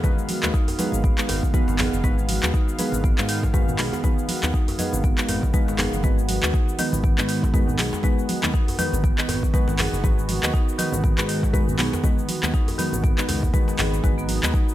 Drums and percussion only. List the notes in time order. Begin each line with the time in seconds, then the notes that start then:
0.04 kick, high conga, low conga, cabasa
0.19 cabasa
0.29 open hi-hat, high conga, cabasa
0.43 clap, djembe slap, high conga, cabasa
0.54 kick, cabasa
0.68 open hi-hat, djembe tone, cabasa
0.79 open hi-hat, djembe tone, high conga, cabasa
0.92 low conga, cabasa
1.04 kick, cabasa
1.18 clap, cabasa
1.29 open hi-hat, djembe slap, djembe tone, cabasa
1.43 kick, low conga, cabasa
1.53 kick, high conga, cabasa
1.68 djembe slap, cabasa
1.79 clap, open hi-hat, high conga, djembe tone, cabasa
1.94 cabasa
2.04 kick, high conga, low conga, cabasa
2.19 cabasa
2.29 open hi-hat, high conga, cabasa
2.43 clap, high conga, cabasa
2.54 kick, cabasa
2.69 cabasa
2.79 open hi-hat, high conga, cabasa
2.92 low conga, cabasa
3.04 kick, cabasa
3.18 clap, cabasa
3.29 open hi-hat, cabasa
3.43 kick, djembe slap, cabasa
3.54 kick, djembe tone, cabasa
3.69 djembe tone, cabasa
3.79 clap, open hi-hat, high conga, cabasa
3.93 djembe slap, djembe tone, cabasa
4.03 kick, high conga, low conga, cabasa
4.19 cabasa
4.28 open hi-hat, high conga, cabasa
4.43 clap, djembe slap, high conga, cabasa
4.54 kick, cabasa
4.68 open hi-hat, djembe tone, cabasa
4.78 open hi-hat, high conga, djembe tone, cabasa
4.93 low conga, cabasa
5.04 kick, djembe tone, cabasa
5.18 clap, cabasa
5.28 open hi-hat, djembe slap, djembe tone, cabasa
5.43 kick, low conga, cabasa
5.54 kick, high conga, cabasa
5.68 djembe slap, cabasa
5.78 clap, open hi-hat, high conga, djembe tone, cabasa
5.93 cabasa
6.03 kick, high conga, low conga, cabasa
6.19 cabasa
6.29 open hi-hat, high conga, cabasa
6.43 clap, high conga, cabasa
6.54 kick, cabasa
6.69 cabasa
6.79 open hi-hat, high conga, cabasa
6.93 low conga, cabasa
7.04 kick, cabasa
7.18 clap, cabasa
7.29 open hi-hat, cabasa
7.43 kick, djembe slap, cabasa
7.54 kick, djembe tone, cabasa
7.68 djembe tone, cabasa
7.78 clap, open hi-hat, high conga, cabasa
7.93 djembe slap, djembe tone, cabasa
8.03 kick, high conga, low conga, cabasa
8.19 cabasa
8.29 open hi-hat, high conga, cabasa
8.43 clap, djembe slap, high conga, cabasa
8.54 kick, cabasa
8.68 open hi-hat, djembe tone, cabasa
8.79 open hi-hat, high conga, djembe tone, cabasa
8.93 low conga, cabasa
9.04 kick, cabasa
9.18 clap, cabasa
9.29 open hi-hat, djembe slap, djembe tone, cabasa
9.43 kick, low conga, cabasa
9.54 kick, high conga, cabasa
9.68 djembe slap, cabasa
9.79 clap, open hi-hat, high conga, djembe tone, cabasa
9.94 cabasa
10.04 kick, high conga, low conga, cabasa
10.19 cabasa
10.29 open hi-hat, high conga, cabasa
10.43 clap, high conga, cabasa
10.54 kick, cabasa
10.69 cabasa
10.79 open hi-hat, high conga, cabasa
10.92 low conga, cabasa
11.04 kick, cabasa
11.18 clap, cabasa
11.29 open hi-hat, cabasa
11.43 kick, djembe slap, cabasa
11.53 kick, djembe tone, cabasa
11.68 djembe tone, cabasa
11.79 clap, open hi-hat, high conga, cabasa
11.93 djembe slap, djembe tone, cabasa
12.04 kick, high conga, low conga, cabasa
12.19 cabasa
12.29 open hi-hat, high conga, cabasa
12.43 clap, djembe slap, high conga, cabasa
12.54 kick, cabasa
12.68 open hi-hat, djembe tone, cabasa
12.78 open hi-hat, djembe tone, high conga, cabasa
12.93 low conga, cabasa
13.03 kick, djembe tone, cabasa
13.18 clap, cabasa
13.29 open hi-hat, djembe slap, djembe tone, cabasa
13.43 kick, low conga, cabasa
13.54 kick, high conga, cabasa
13.68 djembe slap, cabasa
13.79 clap, open hi-hat, high conga, djembe tone, cabasa
13.94 cabasa
14.04 kick, high conga, low conga, cabasa
14.19 cabasa
14.28 open hi-hat, high conga, cabasa
14.43 clap, high conga, cabasa
14.54 kick, cabasa
14.69 cabasa